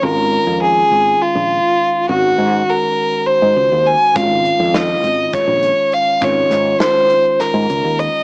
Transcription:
<<
  \new Staff \with { instrumentName = "Violin" } { \time 7/8 \key aes \mixolydian \tempo 4 = 102 bes'4 aes'4 f'4. | ges'4 bes'4 c''4 aes''8 | f''4 ees''4 des''4 f''8 | des''4 c''4 bes'4 ees''8 | }
  \new Staff \with { instrumentName = "Tine electric piano" } { \time 7/8 \key aes \mixolydian <ees aes des' f'>2.~ <ees aes des' f'>8 | <ees aes des' ges'>2.~ <ees aes des' ges'>8 | <ees aes des' f'>2.~ <ees aes des' f'>8 | <ees aes des' f'>2.~ <ees aes des' f'>8 | }
  \new Staff \with { instrumentName = "Fretless electric bass" } { \clef bass \time 7/8 \key aes \mixolydian aes,,8. f,8. aes,,8 r16 bes,,8 r8. | aes,,8 aes,8 r4 r16 aes,16 des,16 ees,8 r16 | aes,,8. f,8. aes,,8 r16 bes,,8 r8. | aes,,8 aes,8 r4 r16 aes,16 des,16 ees,8 r16 | }
  \new DrumStaff \with { instrumentName = "Drums" } \drummode { \time 7/8 r4 r4 r4. | r4 r4 r4. | <hh bd>8 hh8 <hh sn>8 hh8 <hh bd>8 hh8 hh8 | <hh bd>8 <hh sn>8 <hh sn>8 hh8 <hh sn>8 hh8 hh8 | }
>>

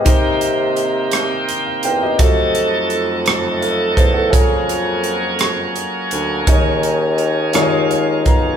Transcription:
<<
  \new Staff \with { instrumentName = "Grand piano" } { \time 6/8 \key bes \dorian \tempo 4. = 56 << { r2 r16 f''16 <bes' g''>16 <g' ees''>16~ | <g' ees''>16 r4. r16 <a' f''>8 <c'' a''>16 <a' ges''>16~ | <a' ges''>16 r2 r8. | r2 f''8 bes''8 | } \\ { <ees' g' bes' c'' ees''>2. | <f' ges' a' c'' ees''>2. | <f' aes' bes' des'' f''>2. | <ees' aes' bes' des'' ees''>4. <f' aes' bes' des'' d'' ees''>4. | } >> }
  \new Staff \with { instrumentName = "Grand piano" } { \clef bass \time 6/8 \key bes \dorian c4. r4. | r2. | r2. | ees4. ees4. | }
  \new Staff \with { instrumentName = "Tonewheel organ" } { \time 6/8 \key bes \dorian << { <bes g'>2. | <a a'>2. | <bes aes'>2.~ | <bes aes'>4. <aes f'>4. | } \\ { c'2. | ees'2. | des'2.~ | des'2. | } >> }
  \new Staff \with { instrumentName = "Tonewheel organ" } { \clef bass \time 6/8 \key bes \dorian ees2. | ges2.~ | ges2. | ees2. | }
  \new Staff \with { instrumentName = "Bassoon" } { \clef bass \time 6/8 \key bes \dorian c2 r8 fes,8 | f,2~ f,8 fes,8 | f,2 r8 d,8 | ees,4. ees,4 ces,8 | }
  \new DrumStaff \with { instrumentName = "Drums" } \drummode { \time 6/8 <hh bd>8 hh8 hh8 <hh ss>8 hh8 hh8 | <hh bd>8 hh8 hh8 <hh ss>8 hh8 <hh bd>8 | <hh bd>8 hh8 hh8 <hh ss>8 hh8 hh8 | <hh bd>8 hh8 hh8 <hh ss>8 hh8 <hh bd>8 | }
>>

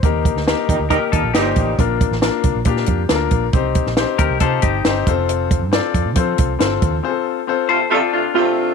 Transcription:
<<
  \new Staff \with { instrumentName = "Clean electric guitar" } { \time 4/4 \key f \mixolydian \tempo 4 = 137 r2 <g' bes'>8 <f' a'>8 <ees' g'>4 | r1 | r4. <g' bes'>8 <f' a'>8 <ees' g'>4 r8 | r1 |
r4. <a' c''>8 <f' a'>8 <d' f'>4. | }
  \new Staff \with { instrumentName = "Grand piano" } { \time 4/4 \key f \mixolydian << { c''8 r2. r8 | r1 | r1 | r1 |
r1 | } \\ { <bes ees' g' bes'>4 <bes ees' g' bes'>4 <bes ees' g' bes'>4 <bes ees' g' ces'' c''>4 | <bes d' f' bes'>4 <bes d' f' bes'>4 <bes d' f' g'>4 <bes d' f' a' bes'>4 | <c' ees' g' c''>4 <c' ees' g' c''>4 <c' ees' g' c''>4 <c' ees' g' c''>8 <c' f' a' c''>8~ | <c' f' a' c''>8 r8 <c' f' a' d''>4 <c' f' a' c''>4 <c' f' a' c''>4 |
<c' f' aes' a' c''>4 <c' f' a' c''>4 <c' f' a' d''>4 <c' f' g' a' c''>4 | } >> }
  \new Staff \with { instrumentName = "Saxophone section" } { \clef bass \time 4/4 \key f \mixolydian r4. <bes, g ees'>16 r16 <bes, g ees'>16 r16 <bes, g ees'>16 r16 <bes, g ees'>4 | r1 | r1 | r1 |
r4. <c a f'>16 r16 <c a f'>16 r16 <c a f'>16 r16 <c a f'>4 | }
  \new Staff \with { instrumentName = "Fingered electric bass" } { \clef bass \time 4/4 \key f \mixolydian ees,8. d,8 r16 ees,16 d,8 r16 ees,16 bes,,16 g,,8 a,,8 | bes,,8. a,,8 r16 c,16 bes,,16 bes,8 f,8 d,8 bes,,8 | c,8. bes,,8 r16 d,16 c,16 c8 g,,8 g,,8 f,,8~ | f,,8. g,8 r16 f,16 a,16 f8 c,8 g,,8 ees,8 |
r1 | }
  \new DrumStaff \with { instrumentName = "Drums" } \drummode { \time 4/4 <hh bd>8 <hh bd>16 sn16 <hh sn>8 <hh bd>8 <hh bd>8 <hh bd>8 <hh sn>8 <hh bd>8 | <hh bd>8 <hh bd>16 sn16 <hh sn>8 <hh bd>8 <hh bd>16 sn16 <hh bd>8 <hh sn>8 <hh bd>8 | <hh bd>8 <hh bd>16 sn16 <hh sn>8 <hh bd>8 <hh bd>8 <hh bd>8 <hh sn>8 <hh bd>8 | hh8 <hh bd>8 <hh sn>8 <hh bd>8 <hh bd>8 <hh bd>8 <hh sn>8 <hh bd>8 |
r4 r4 r4 r4 | }
>>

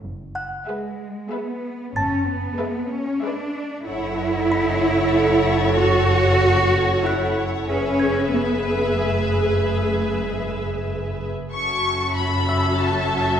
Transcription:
<<
  \new Staff \with { instrumentName = "Music box" } { \time 3/4 \key fis \minor \tempo 4 = 94 r8 <fis'' fis'''>2~ <fis'' fis'''>8 | <a'' a'''>2. | r4 <b'' b'''>2~ | <b'' b'''>4 r4 fis'''4~ |
fis'''8 gis'''2~ gis'''8~ | gis'''8 r2 r8 | r4. <e'' e'''>4. | }
  \new Staff \with { instrumentName = "Violin section" } { \time 3/4 \key fis \minor r4 e''4 e''4 | r4 e''4 e''4 | fis''2.~ | fis''2. |
e''2.~ | e''2~ e''8 r8 | cis'''4 b''4 a''4 | }
  \new Staff \with { instrumentName = "Violin section" } { \time 3/4 \key fis \minor r4 b'4 b'4 | r4 b'4 b'4 | cis''2.~ | cis''2. |
b'2.~ | b'2~ b'8 r8 | <a' e''>2. | }
  \new Staff \with { instrumentName = "Viola section" } { \time 3/4 \key fis \minor r4 gis'4 gis'4 | r4 gis4 gis4 | a'2.~ | a'2. |
gis'2.~ | gis'2~ gis'8 r8 | <cis' fis'>2. | }
  \new Staff \with { instrumentName = "Cello section" } { \time 3/4 \key fis \minor r4 gis4 b4 | cis'8 b4 cis'8 d'4 | e'2. | fis'2 e'8 r8 |
cis'4 b4 a4 | a4 gis4 r4 | fis,2. | }
  \new Staff \with { instrumentName = "Double bass section" } { \clef bass \time 3/4 \key fis \minor fis,,4 r2 | fis,,4 r2 | fis,,2.~ | fis,,2. |
fis,,2.~ | fis,,2~ fis,,8 r8 | fis,,2. | }
>>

